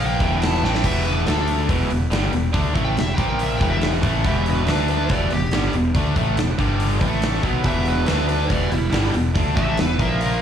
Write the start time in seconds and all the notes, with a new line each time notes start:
Already playing: A#1 A#2 F3 A#3 F4 A#4 F5
0.00 B4 G5
0.20 E1 E2 B2 E3 B3 E4 G4 B4, kick, open hi-hat
0.42 E5 A5, snare, open hi-hat
0.54 snare
0.63 A1 A2 E3 A3 B4 G5, snare
0.75 snare
0.84 E1 E2 B2 E3 G4 E5, kick, open hi-hat, splash
1.05 D4 B4, open hi-hat
1.25 D2 D3 A3 D4 A4 D5, snare, open hi-hat
1.48 open hi-hat
1.69 E1 E2 B2 E3 B3 E4 G4 B4, kick, open hi-hat
1.90 E1 E2 B2, open hi-hat
2.10 G1 G2 D3 G3, snare, open hi-hat
2.32 E1 E2 B2, open hi-hat
2.53 D2 D3 A3 D4, kick, open hi-hat
2.74 A1 A2 E3 A3, kick, open hi-hat
2.83 B4 G5
2.95 E1 E2 B2 G4, snare, open hi-hat
3.00 E5
3.12 B4 G5
3.17 A#1 A#2 F3 A#3 F4 A#4 F5, kick, open hi-hat
3.27 A#4 G5
3.39 A#4 E5, open hi-hat
3.55 A#4 G5
3.60 E1 E2 B2 E3 B3 E4 G4 B4, kick, open hi-hat
3.68 G4 E5
3.81 snare, open hi-hat
3.94 snare
4.02 A1 A2 E3 A3, kick, open hi-hat
4.24 E1 E2 B2 E3 G4 E5, kick, open hi-hat
4.46 D4 B4, open hi-hat
4.66 D2 D3 A3 D4 A4 B4 D5, snare, open hi-hat
4.88 D4 B4, open hi-hat
5.09 E1 E2 B2 E3 B3 E4 G4 B4 D5, kick, open hi-hat
5.31 E1 E2 B2 B3 G4, open hi-hat
5.51 G1 G2 D3 G3, snare, open hi-hat
5.73 E1 E2 B2, open hi-hat
5.95 D2 D3 A3 D4, kick, open hi-hat
6.15 A1 A2 E3 A3, kick, open hi-hat
6.36 E1 E2 B2, snare, open hi-hat
6.58 G1 G2 D3 G3 D4 G4 D5, kick, open hi-hat
6.80 open hi-hat
7.01 A1 A2 E3 A3 E4 A4 E5, kick, open hi-hat
7.22 snare, open hi-hat
7.34 snare
7.43 B1 B2 F#3 B3 E4 G4 B4, kick, open hi-hat
7.63 E1 E2 B2 E3 G4, kick, open hi-hat
7.67 E5
7.85 D4 B4, open hi-hat
8.06 D2 D3 A3 D4 A4 B4 D5, snare, open hi-hat
8.10 D4
8.29 D4 B4, open hi-hat
8.49 E1 E2 B2 E3 B3 E4 G4 B4 D5, kick, open hi-hat
8.71 E1 E2 B2 G3 E4, open hi-hat
8.92 G1 G2 D3 G3, snare, open hi-hat
9.05 snare
9.14 E1 E2 B2, open hi-hat
9.35 D2 D3 A3 D4, kick, open hi-hat
9.55 A1 A2 E3 A3 G4 E5, kick, open hi-hat
9.77 E1 E2 B2 E4 B4, snare, open hi-hat
9.99 A#1 A#2 F3 A#3 F4 A#4 E5, kick, open hi-hat
10.21 F4 A#4, open hi-hat